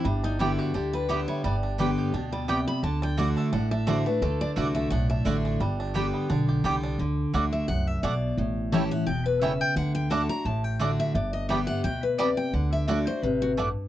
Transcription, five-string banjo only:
X:1
M:4/4
L:1/8
Q:"Swing" 1/4=173
K:G
V:1 name="Five-string banjo"
G, D G, G D G, B, G, | G, D G, G D G, B, G, | D D A, D D D A, D | A, D A, D D D D D |
G, D G, B, D G B, D | z2 [A,D] z3 [A,D] z | z2 [G,^CE] z3 [G,CE] z | z2 [A,D] z3 [A,D] z |
z2 [G,B,D] z3 [G,B,D] z | z2 [A,D] z3 [A,D] z |]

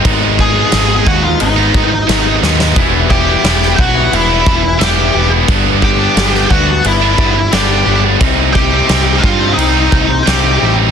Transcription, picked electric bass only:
X:1
M:4/4
L:1/8
Q:1/4=88
K:Glyd
V:1 name="Picked electric bass" clef=bass
^G,,,2 G,,, ^D,, G,,, G,,, G,,, D,, | E,,,2 E,,, B,,, E,,, E,,, E,,, E,,, | G,,,2 G,,, D,, G,,, G,,, G,,, G,,, | =C,,2 C,, G,, C,, C,, C,, A,,, |]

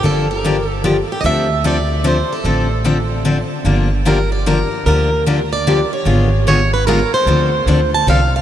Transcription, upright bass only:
X:1
M:3/4
L:1/8
Q:"Swing" 1/4=149
K:Dm
V:1 name="Upright bass" clef=bass
G,,,6 | D,,6 | A,,,6 | G,,,6 |
D,,6 | ^G,,,6 | D,,2 D,,2 C,,2 |]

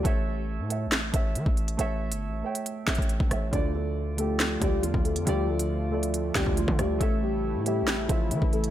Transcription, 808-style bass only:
X:1
M:4/4
L:1/16
Q:1/4=138
K:Dm
V:1 name="808-style bass" clef=bass
A,,,4- A,,, A,,2- A,,/2 A,,,2- A,,,/2 A,,,2 E, A,,,3 | A,,,3 G,,,3/2 A,,,3/2 z4 A,,, A,,,2 A,,, A,,,2 | D,,8- D,,2 ^C,,2 E,, D,,2 F,, | D,,8- D,,2 D,, D,,2 D, D,,2 |
A,,,4- A,,, A,,2- A,,/2 A,,,2- A,,,/2 A,,,2 E, A,,,3 |]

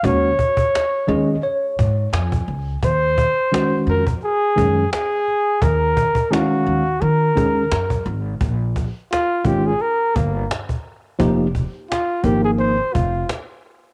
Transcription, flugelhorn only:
X:1
M:4/4
L:1/16
Q:"Swing 16ths" 1/4=86
K:Bbm
V:1 name="Flugelhorn"
d8 z8 | c6 B2 A4 A4 | B4 G4 B6 z2 | z4 F2 =G A B2 B,2 z4 |
z4 F2 =G A c2 F2 z4 |]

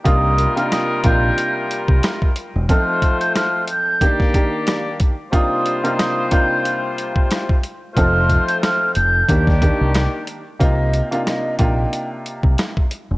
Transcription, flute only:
X:1
M:4/4
L:1/16
Q:"Swing 16ths" 1/4=91
K:Cdor
V:1 name="Flute"
e'3 f' e'2 g'3 z6 z | f'3 g' f'2 g'3 z6 z | e'3 f' e'2 g'3 z6 z | f'3 g' f'2 g'3 z6 z |
e3 f e2 g3 z6 z |]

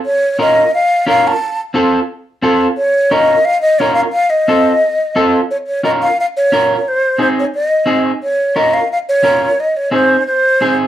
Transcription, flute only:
X:1
M:4/4
L:1/8
Q:1/4=176
K:Bbm
V:1 name="Flute"
d2 e2 f2 f =a- | =a z6 z | d2 e2 f e d f | f e6 z |
d d e f f d3 | c2 c d e3 z | d2 e f f d3 | e d c2 c3 z |]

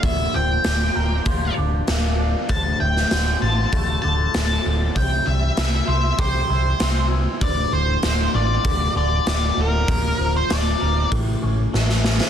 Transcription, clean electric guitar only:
X:1
M:4/4
L:1/8
Q:1/4=98
K:Dm
V:1 name="Clean electric guitar"
B,, F, D B F D B, D | D,, A,, D, F A, D, A,, D, | C, G, E c G E C E | D,, A,, D, F2 D, A,, D, |
B,, F, D B A,, ^C A, C |]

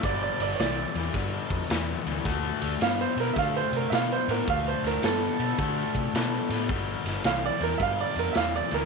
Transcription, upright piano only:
X:1
M:4/4
L:1/8
Q:"Swing" 1/4=108
K:Gmix
V:1 name="Upright piano"
(3d d d [^cd]4 z2 | z2 (3f c _B (3[ef] c B (3[ef] c B | (3f c _B A6 | z2 (3f d _B (3[ef] d B (3[ef] d B |]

